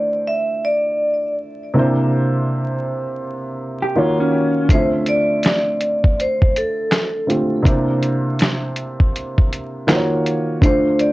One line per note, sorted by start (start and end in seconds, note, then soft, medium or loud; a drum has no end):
0.00 1.68 D3 medium
0.00 1.69 A3 medium
0.00 1.70 E4 medium
0.00 1.70 F4 medium
0.00 1.71 C5 medium
0.00 0.29 D5 medium
0.27 0.64 E5 loud
0.65 1.33 D5 medium
1.74 3.91 C3 medium
1.74 3.92 A#3 medium
1.74 3.93 D4 medium
1.78 3.94 E4 medium
1.78 3.94 C5 medium
3.82 3.96 G4 medium
3.95 4.69 D#3 medium
3.95 4.70 A#3 medium
3.95 4.18 F4 medium
3.95 4.70 F4 medium
3.95 4.70 F#4 medium
3.95 4.71 C#5 medium
4.20 4.67 C#4 medium
4.69 7.25 D3 medium
4.69 7.25 A3 medium
4.69 7.26 C4 medium
4.69 4.88 C5 medium
4.69 kick loud
4.69 closed hi-hat medium
4.73 7.27 F4 soft
4.73 7.27 E5 medium
5.06 6.22 D5 loud
5.06 closed hi-hat medium
5.43 snare loud
5.43 clap medium
5.43 closed hi-hat medium
5.81 closed hi-hat medium
6.04 kick medium
6.20 6.57 C5 medium
6.20 closed hi-hat medium
6.42 kick medium
6.56 7.26 A4 medium
6.56 closed hi-hat medium
6.92 snare loud
6.92 clap loud
6.92 closed hi-hat medium
7.27 7.65 D3 soft
7.27 7.65 A3 soft
7.27 7.65 C4 soft
7.27 7.65 F4 soft
7.27 7.66 G4 soft
7.27 closed hi-hat medium
7.62 9.82 C3 medium
7.62 9.83 A#3 medium
7.62 9.83 D4 medium
7.62 9.84 E4 medium
7.62 kick loud
7.62 closed hi-hat medium
7.68 9.85 C5 medium
8.03 closed hi-hat medium
8.39 snare loud
8.39 clap medium
8.39 closed hi-hat medium
8.76 closed hi-hat medium
9.00 kick medium
9.16 closed hi-hat medium
9.38 kick medium
9.53 closed hi-hat medium
9.87 10.61 D#3 medium
9.87 10.62 A#3 medium
9.87 10.62 F4 medium
9.87 10.63 F#4 medium
9.87 9.97 C5 medium
9.87 snare loud
9.87 clap medium
9.87 closed hi-hat medium
9.96 10.66 C#5 medium
10.26 closed hi-hat medium
10.60 11.12 D3 medium
10.60 11.12 A3 medium
10.60 11.12 D4 medium
10.60 11.12 F4 medium
10.60 11.00 C5 medium
10.60 kick loud
10.60 closed hi-hat medium
10.66 11.12 C5 medium
10.99 11.12 D5 medium
10.99 closed hi-hat medium